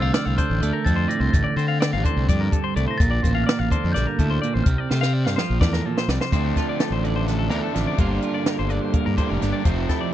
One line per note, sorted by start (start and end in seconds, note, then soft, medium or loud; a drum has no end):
0.00 1.32 D2 medium
0.00 0.38 F3 medium
0.00 0.85 C4 soft
0.00 0.14 F5 medium
0.00 0.12 E6 medium
0.13 0.25 D5 medium
0.13 0.36 F6 medium
0.13 snare loud
0.13 closed hi-hat medium
0.25 0.36 C2 medium
0.25 0.37 F5 medium
0.38 2.02 D3 medium
0.38 0.61 C5 medium
0.38 0.87 G6 loud
0.38 kick medium
0.38 closed hi-hat medium
0.50 0.59 A1 medium
0.60 0.70 D2 medium
0.60 2.55 A3 medium
0.60 0.73 D5 medium
0.60 closed hi-hat medium
0.73 0.85 A#4 medium
0.85 1.05 F2 medium
0.85 1.30 C4 medium
0.85 0.97 A4 medium
0.85 1.09 A6 loud
0.85 kick medium
0.85 closed hi-hat medium
0.96 1.08 C5 medium
1.08 1.33 A2 medium
1.08 1.20 D5 medium
1.08 1.34 A#6 medium
1.08 closed hi-hat medium
1.20 1.30 C2 medium
1.20 1.32 C5 medium
1.33 1.43 A1 medium
1.33 2.28 D2 medium
1.33 2.24 A6 medium
1.33 kick loud
1.33 closed hi-hat medium
1.44 1.56 D5 medium
1.56 1.95 D3 medium
1.56 2.97 C4 medium
1.56 1.68 C5 medium
1.56 closed hi-hat medium
1.68 1.80 F5 medium
1.80 1.92 D5 medium
1.80 snare loud
1.80 closed hi-hat medium
1.93 2.02 A1 medium
1.93 2.04 F5 medium
2.04 3.70 D3 medium
2.04 2.28 C5 medium
2.04 kick medium
2.04 closed hi-hat medium
2.16 2.26 C2 medium
2.28 2.52 F2 medium
2.28 2.47 G2 loud
2.28 2.40 D5 medium
2.28 kick loud
2.28 closed hi-hat medium
2.41 2.52 A#4 medium
2.52 2.75 G2 medium
2.52 2.64 A4 medium
2.52 kick medium
2.52 closed hi-hat medium
2.64 2.75 C5 medium
2.76 2.85 C2 medium
2.76 2.99 A2 medium
2.76 2.87 D5 medium
2.76 closed hi-hat medium
2.88 2.99 C5 medium
2.88 2.98 A#6 medium
2.98 3.19 A#1 medium
2.98 3.71 A#2 medium
2.98 3.47 A6 loud
2.98 kick loud
2.98 closed hi-hat medium
3.11 3.23 D5 medium
3.23 3.42 A1 medium
3.23 4.63 A#3 medium
3.23 3.34 C5 medium
3.23 kick medium
3.23 closed hi-hat medium
3.35 3.46 F5 medium
3.44 3.59 D5 medium
3.44 3.94 F6 medium
3.49 snare loud
3.49 closed hi-hat medium
3.59 3.68 A1 medium
3.59 3.70 F5 medium
3.71 4.66 D3 medium
3.71 3.94 C5 medium
3.71 kick medium
3.71 closed hi-hat medium
3.84 3.93 F2 loud
3.92 4.05 A#1 medium
3.92 4.18 G2 medium
3.92 4.06 D5 medium
3.92 4.66 G6 medium
3.92 snare soft
3.92 closed hi-hat medium
4.07 4.19 A#4 medium
4.19 4.37 D2 medium
4.19 4.42 A2 medium
4.19 4.30 A4 medium
4.19 kick medium
4.19 closed hi-hat medium
4.30 4.41 C5 medium
4.42 4.66 A#2 medium
4.42 4.54 D5 medium
4.42 closed hi-hat medium
4.54 4.64 A1 medium
4.54 4.65 C5 medium
4.64 4.75 C2 medium
4.64 5.37 C3 medium
4.64 5.79 F6 medium
4.64 kick loud
4.64 closed hi-hat medium
4.78 4.90 D5 medium
4.90 5.27 C3 medium
4.90 5.03 A3 medium
4.90 5.01 C5 medium
4.90 snare medium
5.01 6.32 C4 medium
5.01 5.13 F5 medium
5.01 snare medium
5.13 5.25 D5 medium
5.25 5.35 G2 medium
5.25 5.36 F5 medium
5.25 snare medium
5.36 6.30 F3 medium
5.36 5.60 C5 medium
5.36 snare medium
5.50 5.59 A#1 medium
5.61 5.80 E2 medium
5.61 5.84 A2 medium
5.61 5.72 D5 medium
5.61 kick loud
5.61 snare medium
5.73 5.86 A#4 medium
5.73 snare medium
5.86 6.09 A#2 medium
5.86 5.97 A4 medium
5.98 6.09 C5 medium
5.98 snare medium
6.08 6.17 C2 medium
6.08 6.32 C3 medium
6.08 6.20 D5 medium
6.08 snare medium
6.21 6.32 C5 medium
6.21 snare medium
6.32 7.27 D2 medium
6.32 6.51 D2 medium
6.32 7.50 D3 medium
6.32 7.51 F3 medium
6.32 7.49 A3 medium
6.32 7.96 C4 medium
6.32 7.48 D4 loud
6.32 6.56 C5 medium
6.32 kick loud
6.32 closed hi-hat medium
6.56 8.01 F4 medium
6.56 6.68 A4 medium
6.56 kick medium
6.56 snare soft
6.56 closed hi-hat medium
6.69 6.80 D5 medium
6.80 6.92 A4 medium
6.80 snare loud
6.80 closed hi-hat medium
6.90 7.50 A1 medium
6.90 7.04 C5 medium
7.04 7.98 D3 medium
7.04 7.15 D5 medium
7.04 closed hi-hat medium
7.16 7.27 C5 medium
7.27 7.51 D2 medium
7.27 7.38 A4 medium
7.27 snare soft
7.27 closed hi-hat medium
7.39 7.50 A4 medium
7.49 7.60 D2 medium
7.49 7.74 E2 medium
7.49 7.72 D3 medium
7.49 7.73 F3 medium
7.49 7.73 A3 medium
7.49 7.72 D4 medium
7.49 7.62 A#4 medium
7.49 closed hi-hat medium
7.63 7.87 A4 medium
7.73 7.85 A1 medium
7.73 7.98 F2 medium
7.73 7.96 D3 medium
7.73 7.99 F3 medium
7.73 7.97 A3 medium
7.73 7.98 D4 medium
7.73 snare soft
7.73 closed hi-hat medium
7.87 7.99 D5 medium
7.98 8.18 G1 medium
7.98 9.16 G2 medium
7.98 9.40 G2 medium
7.98 9.16 D3 medium
7.98 8.68 D3 medium
7.98 9.17 G3 medium
7.98 9.17 A#3 loud
7.98 9.63 A#3 medium
7.98 9.63 D4 soft
7.98 9.17 D4 medium
7.98 8.23 F4 medium
7.98 8.23 C5 medium
7.98 kick loud
7.98 closed hi-hat medium
8.22 9.91 F4 medium
8.22 8.34 A#4 medium
8.22 closed hi-hat medium
8.34 8.46 D5 medium
8.46 8.58 A#4 medium
8.46 snare medium
8.46 closed hi-hat medium
8.59 8.78 G1 medium
8.59 8.70 C5 medium
8.70 9.65 D3 medium
8.70 8.81 D5 medium
8.70 closed hi-hat medium
8.81 8.93 C5 medium
8.93 9.17 A#2 medium
8.93 9.05 A#4 medium
8.93 kick medium
8.93 closed hi-hat medium
9.06 9.16 G2 medium
9.06 9.17 A#4 medium
9.17 9.40 G2 medium
9.17 9.41 A2 medium
9.17 9.40 D3 medium
9.17 9.41 G3 medium
9.17 9.40 A#3 medium
9.17 9.39 D4 medium
9.17 9.30 C5 medium
9.17 kick medium
9.17 closed hi-hat medium
9.30 9.40 F1 medium
9.30 9.52 A#4 medium
9.40 9.52 G1 medium
9.40 9.65 G2 medium
9.40 9.64 G2 medium
9.40 9.65 D3 medium
9.40 9.64 G3 medium
9.40 9.64 A#3 medium
9.40 9.63 D4 medium
9.40 snare soft
9.40 closed hi-hat medium
9.53 9.65 D5 medium
9.65 9.85 F1 medium
9.65 10.14 F2 medium
9.65 10.14 C3 medium
9.65 10.14 F3 medium
9.65 10.14 A3 loud
9.65 10.14 C4 medium
9.65 9.89 C5 medium
9.65 kick loud
9.65 closed hi-hat medium
9.89 10.14 E4 medium
9.89 10.01 A4 medium
9.89 kick medium
9.89 snare soft
9.89 closed hi-hat medium
10.01 10.13 D5 medium